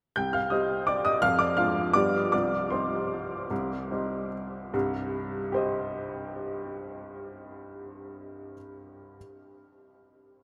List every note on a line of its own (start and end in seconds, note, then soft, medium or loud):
0.16 0.50 C2 soft
0.16 0.33 G5 medium
0.16 0.34 G6 medium
0.33 0.50 F5 medium
0.33 0.51 F6 medium
0.50 1.19 G3 soft
0.50 1.19 C4 soft
0.50 1.19 G4 soft
0.50 0.85 D#5 soft
0.50 0.87 D#6 medium
0.87 1.05 D5 medium
0.87 1.05 D6 medium
1.05 1.21 D#5 medium
1.05 1.22 D#6 medium
1.22 1.56 F2 medium
1.22 1.38 F5 medium
1.22 1.39 F6 loud
1.39 1.56 D5 medium
1.39 1.57 D6 medium
1.57 1.91 G#3 soft
1.57 1.91 D4 soft
1.57 1.91 F4 soft
1.57 1.92 F5 medium
1.57 1.94 F6 medium
1.94 2.31 G2 medium
1.94 2.29 G3 soft
1.94 2.29 B3 soft
1.94 2.29 F4 soft
1.94 2.30 D5 medium
1.94 2.31 D6 medium
2.32 2.70 C2 soft
2.32 2.69 D5 medium
2.32 2.71 D6 medium
2.70 3.46 G3 soft
2.70 3.46 C4 soft
2.70 3.47 D#4 soft
2.70 4.28 C5 soft
2.70 4.31 C6 medium
3.50 3.89 C2 medium
3.91 4.70 G3 soft
3.91 4.70 C4 soft
3.91 4.70 D#4 soft
4.74 8.53 C2 medium
4.74 8.53 G2 medium
5.52 8.53 G4 soft
5.52 8.54 C5 soft
5.56 8.55 D#5 soft